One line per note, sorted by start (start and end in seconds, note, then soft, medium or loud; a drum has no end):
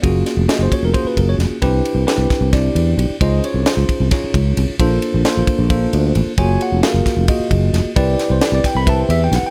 0.02 0.22 F#1 medium
0.02 0.45 A#3 medium
0.02 0.45 C#4 medium
0.02 0.45 F4 medium
0.02 0.45 F#4 medium
0.02 0.45 G#4 medium
0.02 kick loud
0.02 ride medium
0.26 snare soft
0.26 ride medium
0.37 0.46 F1 medium
0.48 0.90 A#3 medium
0.48 0.90 C#4 medium
0.48 0.90 F4 medium
0.48 0.90 F#4 medium
0.48 0.90 G#4 medium
0.48 0.61 D#5 medium
0.48 snare loud
0.48 ride medium
0.59 0.69 F#1 medium
0.59 0.73 C5 medium
0.72 0.84 C#5 medium
0.72 kick medium
0.72 ride medium
0.83 0.92 F1 medium
0.83 0.95 A#4 medium
0.94 1.56 A#3 medium
0.94 1.56 C#4 medium
0.94 1.56 F4 medium
0.94 1.57 F#4 medium
0.94 1.56 G#4 medium
0.94 1.05 C5 loud
0.94 kick loud
0.94 ride medium
1.05 1.18 B4 medium
1.05 muted fretless electric bass stroke soft
1.17 1.35 F#1 medium
1.17 1.28 A#4 medium
1.17 kick medium
1.17 ride medium
1.29 1.36 C#5 medium
1.39 1.48 F1 medium
1.39 snare soft
1.39 ride medium
1.50 muted fretless electric bass stroke soft
1.62 1.80 C2 medium
1.62 2.04 C4 medium
1.62 2.04 D4 medium
1.62 2.04 E4 medium
1.62 2.04 G4 medium
1.62 2.04 B4 loud
1.62 kick loud
1.62 ride medium
1.85 ride medium
1.95 2.04 C2 medium
2.07 2.49 C4 medium
2.07 2.49 D4 medium
2.07 2.49 E4 medium
2.07 2.49 G4 medium
2.07 2.49 B4 medium
2.07 snare medium
2.07 ride medium
2.18 2.27 C2 medium
2.30 muted fretless electric bass stroke soft
2.30 kick medium
2.30 snare soft
2.30 ride medium
2.41 2.68 C2 medium
2.52 3.15 C4 medium
2.52 3.15 D4 medium
2.52 3.15 E4 medium
2.52 3.15 G4 medium
2.52 3.15 D5 medium
2.52 kick medium
2.52 snare soft
2.52 ride medium
2.75 2.93 E2 medium
2.75 ride medium
2.98 3.07 B1 loud
2.98 ride medium
3.10 muted fretless electric bass stroke soft
3.21 3.39 C#2 loud
3.21 3.63 C#4 medium
3.21 3.63 D#4 medium
3.21 3.63 F4 medium
3.21 3.63 G#4 medium
3.21 3.63 C5 medium
3.21 3.43 D#5 medium
3.21 kick loud
3.21 ride medium
3.44 3.67 C#5 medium
3.44 ride medium
3.54 3.64 C2 medium
3.66 4.08 C#4 medium
3.66 4.08 D#4 medium
3.66 4.08 F4 medium
3.66 4.08 G#4 medium
3.66 4.08 C5 medium
3.66 snare loud
3.66 ride medium
3.77 3.86 C#2 medium
3.89 muted fretless electric bass stroke soft
3.89 kick medium
3.89 ride medium
4.00 4.09 C2 medium
4.11 4.74 C#4 medium
4.11 4.74 D#4 medium
4.11 4.74 F4 medium
4.11 4.74 G#4 medium
4.11 4.74 C#5 medium
4.11 kick loud
4.11 snare soft
4.11 ride medium
4.24 muted fretless electric bass stroke soft
4.34 4.52 C#2 medium
4.34 kick medium
4.34 ride medium
4.57 4.66 C2 medium
4.57 ride medium
4.70 muted fretless electric bass stroke soft
4.79 4.97 A#1 medium
4.79 5.21 A#3 medium
4.79 5.21 D4 medium
4.79 5.21 F4 medium
4.79 5.21 A4 medium
4.79 5.21 C5 loud
4.79 kick loud
4.79 ride medium
5.02 ride medium
5.14 5.23 A#1 medium
5.25 5.66 A#3 medium
5.25 5.66 D4 medium
5.25 5.67 F4 medium
5.25 5.66 A4 medium
5.25 5.66 C5 medium
5.25 snare medium
5.25 ride medium
5.37 5.46 A#1 medium
5.47 kick medium
5.47 ride medium
5.59 5.86 A#1 medium
5.70 6.32 A#3 medium
5.70 6.32 D4 medium
5.70 6.32 F4 medium
5.70 6.32 A4 medium
5.70 6.32 C5 medium
5.70 kick loud
5.70 ride medium
5.93 6.11 D2 loud
5.93 ride medium
6.15 6.25 A1 loud
6.15 ride medium
6.38 6.56 F#1 loud
6.38 6.80 A#3 medium
6.38 6.80 F4 medium
6.38 6.80 F#4 medium
6.38 6.80 G#4 medium
6.38 6.80 C#5 loud
6.38 6.60 G#5 loud
6.38 kick loud
6.38 ride medium
6.61 6.84 F#5 medium
6.61 ride medium
6.72 6.81 F1 medium
6.83 7.25 A#3 medium
6.83 7.24 F4 medium
6.83 7.25 F#4 medium
6.83 7.25 G#4 medium
6.83 7.25 A#4 medium
6.83 7.47 F5 medium
6.83 snare loud
6.83 ride medium
6.94 7.03 F#1 loud
7.06 muted fretless electric bass stroke soft
7.06 kick medium
7.06 snare soft
7.06 ride medium
7.17 7.26 F1 medium
7.28 7.91 A#3 medium
7.28 7.91 F4 medium
7.28 7.90 F#4 medium
7.28 7.91 G#4 medium
7.28 7.91 D#5 medium
7.28 kick loud
7.28 ride medium
7.40 muted fretless electric bass stroke soft
7.51 7.69 F#1 medium
7.51 kick medium
7.51 ride medium
7.74 7.83 F1 medium
7.74 snare soft
7.74 ride medium
7.85 muted fretless electric bass stroke soft
7.96 8.14 C2 medium
7.96 8.38 C4 medium
7.96 8.38 E4 medium
7.96 8.38 G4 medium
7.96 8.38 B4 medium
7.96 8.38 D5 loud
7.96 kick loud
7.96 ride medium
8.19 snare soft
8.19 ride medium
8.30 8.39 C2 medium
8.30 8.42 C5 medium
8.41 8.84 C4 medium
8.41 8.84 E4 medium
8.41 8.84 G4 medium
8.41 8.84 B4 medium
8.41 8.53 D5 medium
8.41 snare loud
8.41 ride medium
8.52 8.62 C2 medium
8.52 8.65 D5 medium
8.64 8.76 G5 medium
8.64 muted fretless electric bass stroke soft
8.64 kick medium
8.64 snare soft
8.64 ride medium
8.75 9.02 C2 medium
8.75 8.87 B5 loud
8.86 9.49 C4 medium
8.86 9.49 E4 medium
8.86 9.49 G4 medium
8.86 9.49 B4 medium
8.86 9.10 E5 medium
8.86 8.99 A5 medium
8.86 kick loud
8.86 ride medium
9.00 9.11 C5 medium
9.09 9.27 E2 loud
9.09 9.21 E5 medium
9.09 ride medium
9.24 9.34 G5 loud
9.32 9.41 B1 loud
9.32 9.45 F#5 loud
9.32 snare soft
9.32 ride medium
9.43 9.50 G5 medium
9.43 muted fretless electric bass stroke soft